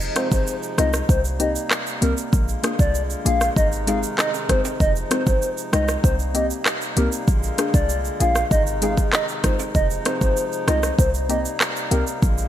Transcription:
Already playing: harmonium C3 F3 G#3 D#4
0.00 shaker
0.15 synth pluck G#3 C4 D#4 F4, soft synth lead C5, cross-stick, closed hi-hat, shaker
0.32 808-style bass G#1, soft synth lead C5, kick, shaker
0.47 shaker
0.63 shaker
0.78 808-style bass C2, synth pluck G#3 C4 D#4 F4, soft synth lead D#5, cross-stick, closed hi-hat, shaker
0.93 cross-stick, shaker
1.09 808-style bass C2, harmonium G3 A#3, soft synth lead C5, kick, shaker
1.24 shaker
1.39 synth pluck A#3 C4 D#4 G4, soft synth lead D#5, closed hi-hat, shaker
1.56 shaker
1.71 cross-stick, clap, shaker
1.86 shaker
2.01 808-style bass C2, synth pluck A#3 C4 D#4 G4, soft synth lead A#4, closed hi-hat, shaker
2.17 shaker
2.33 808-style bass A#1, harmonium D3 G#3 F4, kick, shaker
2.48 shaker
2.63 synth pluck A#3 D4 F4 G#4, cross-stick, closed hi-hat, shaker
2.79 808-style bass C2, soft synth lead D5, kick, shaker
2.95 shaker
3.10 shaker
3.25 808-style bass A#1, synth pluck A#3 D4 F4 G#4, soft synth lead F5, closed hi-hat, shaker
3.41 cross-stick, shaker
3.56 808-style bass G#1, harmonium C3 D#3 D#4, soft synth lead D#5, kick, shaker
3.72 shaker
3.87 synth pluck G#3 C4 D#4 G#4, soft synth lead F5, closed hi-hat, high timbale, shaker
4.03 shaker
4.18 soft synth lead D#5, cross-stick, clap, shaker
4.34 high timbale, shaker
4.49 808-style bass G1, synth pluck G#3 C4 D#4 G#4, soft synth lead C5, kick, cross-stick, closed hi-hat, shaker
4.65 high timbale, shaker
4.80 808-style bass F1, harmonium F3 G#3, soft synth lead D#5, kick, shaker
4.96 shaker
5.11 synth pluck G#3 C4 D#4 F4, soft synth lead C5, cross-stick, closed hi-hat, shaker
5.27 808-style bass G#1, soft synth lead C5, kick, shaker
5.42 shaker
5.57 shaker
5.72 808-style bass C2, synth pluck G#3 C4 D#4 F4, soft synth lead D#5, cross-stick, closed hi-hat, shaker
5.88 cross-stick, shaker
6.04 808-style bass C2, harmonium G3 A#3, soft synth lead C5, kick, shaker
6.19 shaker
6.34 synth pluck A#3 C4 D#4 G4, soft synth lead D#5, closed hi-hat, shaker
6.50 shaker
6.66 cross-stick, clap, shaker
6.81 shaker
6.96 808-style bass C2, synth pluck A#3 C4 D#4 G4, soft synth lead A#4, closed hi-hat, shaker
7.12 shaker
7.28 808-style bass A#1, harmonium D3 G#3 F4, kick, shaker
7.43 shaker
7.58 synth pluck A#3 D4 F4 G#4, cross-stick, closed hi-hat, shaker
7.74 808-style bass C2, soft synth lead D5, kick, shaker
7.89 shaker
8.05 shaker
8.20 808-style bass A#1, synth pluck A#3 D4 F4 G#4, soft synth lead F5, closed hi-hat, shaker
8.35 cross-stick, shaker
8.51 808-style bass G#1, harmonium C3 D#3 D#4, soft synth lead D#5, kick, shaker
8.67 shaker
8.82 synth pluck G#3 C4 D#4 G#4, soft synth lead F5, closed hi-hat, high timbale, shaker
8.97 kick, shaker
9.13 soft synth lead D#5, cross-stick, clap, shaker
9.28 shaker
9.44 808-style bass G1, synth pluck G#3 C4 D#4 F4, soft synth lead C5, kick, cross-stick, closed hi-hat, shaker
9.59 high timbale, shaker
9.75 808-style bass F1, harmonium F3 D#4, soft synth lead D#5, kick, shaker
9.90 shaker
10.05 synth pluck G#3 C4 D#4 F4, soft synth lead C5, cross-stick, closed hi-hat, shaker
10.21 808-style bass G#1, soft synth lead C5, kick, shaker
10.37 shaker
10.52 shaker
10.67 808-style bass C2, synth pluck G#3 C4 D#4 F4, soft synth lead D#5, cross-stick, closed hi-hat, shaker
10.83 cross-stick, shaker
10.99 808-style bass C2, harmonium G3 A#3, soft synth lead C5, kick, shaker
11.14 shaker
11.29 synth pluck A#3 C4 D#4 G4, soft synth lead D#5, closed hi-hat, shaker
11.45 shaker
11.61 cross-stick, clap, shaker
11.76 shaker
11.91 808-style bass C2, synth pluck A#3 C4 D#4 G4, soft synth lead A#4, closed hi-hat, shaker
12.07 shaker
12.22 808-style bass A#1, harmonium D3 G#3 F4, kick, shaker
12.38 shaker

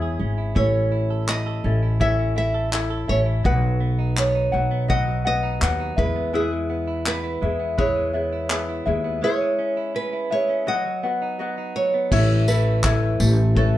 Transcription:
Already playing: upright bass E2, clean electric guitar G#3 C#4 E4, ukulele E4 G#4 C#5 E5, nylon-string guitar C#5
0.02 clean electric guitar G#4
0.19 upright bass G#1, clean electric guitar C#4
0.38 clean electric guitar E4
0.55 upright bass A1, clean electric guitar C#4, ukulele E4 A4 C#5, nylon-string guitar C#5, kick
0.74 clean electric guitar C#4
0.92 clean electric guitar E4
1.10 clean electric guitar A4
1.28 clean electric guitar E4, nylon-string guitar D#5, clap
1.46 clean electric guitar A4
1.64 upright bass A1, clean electric guitar C#4, ukulele E4 A4
1.83 clean electric guitar E4
2.00 clean electric guitar C#4, ukulele E4 A4 C#5 E5, nylon-string guitar E5, kick
2.19 clean electric guitar C#4
2.36 clean electric guitar E4, ukulele E4 A4 E5, nylon-string guitar E5
2.54 clean electric guitar A4
2.72 clean electric guitar E4, ukulele E4 A4 C#5 E5, clap
2.90 clean electric guitar A4
3.08 upright bass A1, clean electric guitar C#4, ukulele E4 A4 E5, nylon-string guitar C#5
3.26 clean electric guitar E4
3.44 upright bass B1, clean electric guitar F#3, ukulele F#4 B4 D#5 F#5, nylon-string guitar B4, kick
3.62 clean electric guitar F#3
3.80 clean electric guitar B3
3.99 clean electric guitar D#4
4.16 clean electric guitar B3, nylon-string guitar C#5, clap
4.35 clean electric guitar D#4
4.52 upright bass B1, clean electric guitar F#3, ukulele F#4 B4 F#5
4.71 clean electric guitar B3
4.88 clean electric guitar F#3, ukulele F#4 B4 D#5 F#5, nylon-string guitar D#5, kick
5.07 clean electric guitar F#3
5.25 clean electric guitar B3, ukulele F#4 B4 F#5, nylon-string guitar D#5
5.43 clean electric guitar D#4
5.61 upright bass D#2, clean electric guitar B3, ukulele F#4 B4 D#5 F#5, clap
5.80 clean electric guitar D#4
5.97 upright bass E2, clean electric guitar G#3, ukulele E4 G#4 E5, nylon-string guitar B4, kick
6.16 clean electric guitar B3
6.33 clean electric guitar G#3, ukulele E4 G#4 B4 E5, nylon-string guitar G#4
6.51 clean electric guitar G#3
6.70 clean electric guitar B3
6.87 clean electric guitar E4
7.06 clean electric guitar B3, nylon-string guitar B4, clap
7.24 clean electric guitar E4
7.42 upright bass E2, clean electric guitar G#3, ukulele E4 G#4 E5
7.60 clean electric guitar B3
7.78 clean electric guitar G#3, ukulele E4 G#4 B4 E5, nylon-string guitar C#5, kick
7.96 clean electric guitar G#3
8.13 clean electric guitar B3, ukulele E4 G#4 E5
8.33 clean electric guitar E4
8.50 clean electric guitar B3, ukulele E4 G#4 B4 E5, clap
8.69 clean electric guitar E4
8.86 upright bass D#2, clean electric guitar G#3, ukulele E4 G#4 E5
9.04 clean electric guitar B3
9.22 clean electric guitar G#3, ukulele E4 G#4 C#5 E5, nylon-string guitar C#5
9.41 clean electric guitar G#3
9.59 clean electric guitar C#4
9.77 clean electric guitar E4
9.95 clean electric guitar C#4, nylon-string guitar B4
10.13 clean electric guitar E4
10.31 clean electric guitar G#3, ukulele E4 G#4 E5, nylon-string guitar C#5
10.49 clean electric guitar C#4
10.67 clean electric guitar F#3, ukulele F#4 B4 D#5 F#5, nylon-string guitar D#5
10.85 clean electric guitar F#3
11.03 clean electric guitar B3, ukulele F#4 B4 F#5
11.22 clean electric guitar D#4
11.39 clean electric guitar B3, ukulele F#4 B4 D#5 F#5
11.58 clean electric guitar D#4
11.76 clean electric guitar F#3, nylon-string guitar C#5
11.94 clean electric guitar B3
12.11 upright bass A1, clean electric guitar E3, upright piano A3 E4 C#5, ukulele E4 A4 C#5 E5, kick, crash
12.48 clean electric guitar A3, ukulele E4 A4 E5, nylon-string guitar B4, tambourine
12.83 clean electric guitar E3, ukulele E4 A4 C#5 E5, kick, clap
13.20 upright bass A1, clean electric guitar A3, tambourine
13.55 clean electric guitar E3, upright piano A3 E4 C#5, nylon-string guitar A4, kick

